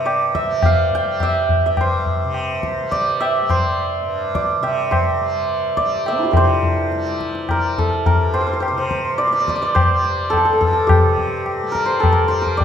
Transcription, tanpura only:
Already playing: G2 C3 G3
0.45 G3
1.04 G3
1.64 G2
2.24 C3
2.83 G3
3.42 G3
4.02 G2
4.61 C3
5.21 G3
5.79 G3
6.36 C3
6.94 G3
7.54 G3
8.12 G2
8.71 C3
9.30 G3
9.90 G3
10.47 G2
11.04 C3
11.63 G3
12.23 G3

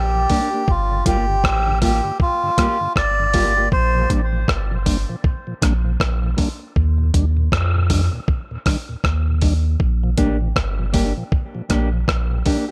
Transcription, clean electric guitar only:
0.30 A#3 D4 G4
0.53 A#3 D4 G4
1.07 A#3 F4 G4
1.68 muted clean electric guitar stroke
1.82 A#3 F4 G4
2.58 A#3 F4 G4
3.34 A#3 F4 G4
3.57 A#3 F4 G4
10.18 A#3 D4 G4
10.79 muted clean electric guitar stroke
10.93 A#3 D4 G4
11.69 A#3 D4 G4
12.46 A#3 D4 G4

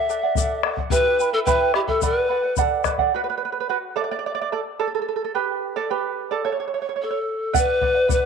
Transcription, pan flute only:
Already playing: E5
0.91 B4
1.33 A4
1.46 B4
1.75 G4
1.88 A4
2.05 B4
7.02 A4
7.58 B4
8.13 B4

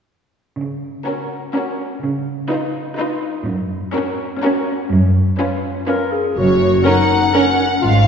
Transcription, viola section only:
1.07 C#4
1.54 C#4
2.50 D#4
2.97 D#4
3.94 C#4
4.42 C#4
5.39 C#4
5.88 C#4
6.85 C#4 A#4
7.34 C#4 A#4

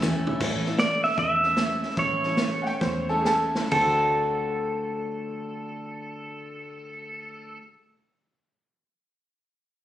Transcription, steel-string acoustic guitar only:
0.03 A2 E3 A3 C#4 E4 A4
0.42 A2 E3 A3 C#4 E4 A4
0.67 A3 C#4 E4 A4
0.79 A3 C#4 E4 A4
1.44 A3 C#4 E4 A4
1.57 A3 C#4 E4 A4
1.84 A3 C#4 E4 A4
1.97 A2 E3 A3 C#4 E4 A4
2.25 A3 C#4 E4 A4
2.38 A3 C#4 E4 A4
3.09 A3 C#4 E4 A4
3.26 A3 C#4 E4 A4
3.56 A3 C#4 E4 A4
3.67 D3
3.73 A3 D4
3.80 F#4 A4

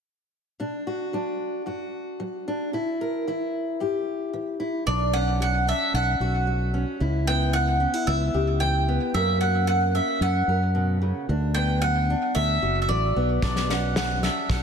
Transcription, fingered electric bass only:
4.87 B1
5.94 B1
6.20 B1
7.01 C#2
8.07 C#2
8.34 C#2
9.14 F#2
10.21 F#2
10.48 F#2
11.29 D2
12.36 D2
12.62 F#1
12.89 A1
13.16 B1
13.43 B1
14.50 B1

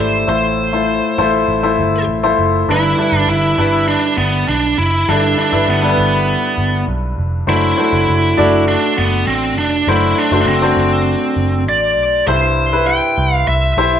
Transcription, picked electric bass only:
0.00 G#1
0.28 A1
1.18 A1
1.48 A1
1.78 G1
2.08 A1
2.38 F#1
2.68 G1
3.12 G1
3.28 G1
3.58 G1
4.18 G1
4.48 B1
4.78 F#1
5.09 G1
5.53 G1
5.68 G1
5.98 G1
6.58 G1
6.88 B1
7.18 F1
7.47 F#1
7.93 F#1
8.08 F#1
8.39 F#1
8.99 F#1
9.28 A1
9.57 F1
9.87 F#1
10.32 F#1
10.46 F#1
10.77 F#1
11.36 F#1
11.67 A1
11.97 B1
12.27 C2
13.18 C2
13.47 C2
13.77 B1

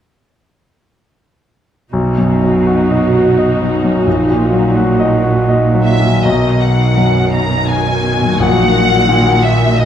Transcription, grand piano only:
1.93 B1
2.18 F#2
2.43 F#3
2.67 F#4
2.91 D#5
3.15 F#4
3.38 D#5
3.62 F#3
3.85 F#2
4.07 A#1
4.30 A#2
4.53 F#3
4.76 F#4
5.00 D#5
5.24 F#4
5.49 D#5
5.74 F#3
6.00 A#2
6.25 B1
6.97 F#2
8.40 A#1
9.09 A#2

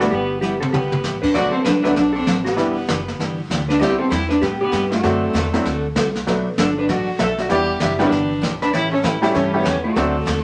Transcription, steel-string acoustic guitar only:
0.12 G3 B3 E4 G4
0.42 G3 B3 E4 G4
0.73 G3 B3 E4 G4
1.04 G3 B3 E4 G4
1.34 B2 F#3 A3 D4 F#4
1.65 B2 F#3 A3 D4 F#4
1.96 B2 F#3 A3 D4 F#4
2.27 B2 F#3 A3 D4 F#4
2.57 E3 B3 D4 G4
2.88 E3 B3 D4 G4
3.20 E3 B3 D4 G4
3.50 E3 B3 D4 G4
3.80 C3 G3 B3 E4 G4
4.10 C3 G3 B3 E4 G4
4.41 C3 G3 B3 E4 G4
4.71 C3 G3 B3 E4 G4
5.03 D3 A3 C4 F#4 A4
5.33 D3 A3 C4 F#4 A4
5.65 D3 A3 C4 F#4 A4
5.96 D3 A3 C4 F#4 A4
6.27 B2 F#3 A3 D4 F#4
6.58 B2 F#3 A3 D4 F#4
6.89 B2 F#3 A3 D4 F#4
7.19 B2 F#3 A3 D4 F#4
7.50 E3 B3 D4 G4
7.80 E3 B3 D4 G4
8.11 E3 B3 D4 G4
8.41 E3 B3 D4 G4
8.73 C#3 E3 A3 C#4 G4
9.03 C#3 E3 A3 C#4 G4
9.34 C#3 E3 A3 C#4 G4
9.65 C#3 E3 A3 C#4 G4
9.95 D3 A3 C4 F#4 A4
10.26 D3 A3 C4 F#4 A4

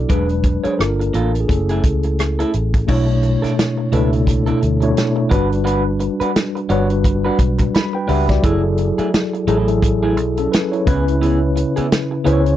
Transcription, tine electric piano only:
Already playing: F#3 B3 D4 E4 F#4 A4 D5
0.09 F#3 G#3 D4 B4
0.72 C5
0.77 A#3 D4 F4 A4 A#4
1.40 G#4
1.48 A3 C#4 E4 G#4 A4
2.87 B2 A3 D4 E4 C#5
3.92 B2 A3 D4 E4 A4
4.81 B2 A3 D4 E4 C#5
5.30 G3 D4 F#4 B4
6.69 G3 D4 F#4 B4
7.75 B5
7.95 B4 G5
8.10 G4 E5
8.29 F#4 D5
8.43 F#3 E4 G#4 A4
9.47 F#3 E4 G#4 A4
10.38 C#4 A4
10.52 B4
10.72 E4 C#5
10.86 C#3 C#4 E4 B4
12.24 C#3 C#4 E4 C5
12.33 C#5

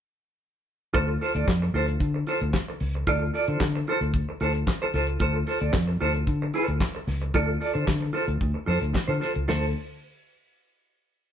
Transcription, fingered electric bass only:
0.94 D2
1.35 D2
1.48 F2
1.74 D2
2.00 D3
2.42 D2
2.81 C#2
3.07 D2
3.48 D3
3.60 D3
4.01 D2
4.41 D2
4.94 C#2
5.20 D2
5.62 D2
5.74 F2
6.01 D2
6.28 D3
6.68 D2
7.07 C#2
7.34 D2
7.75 D3
7.88 D3
8.28 D2
8.41 D2
8.67 F2
8.82 D2
9.08 D3
9.36 C#2
9.49 D2

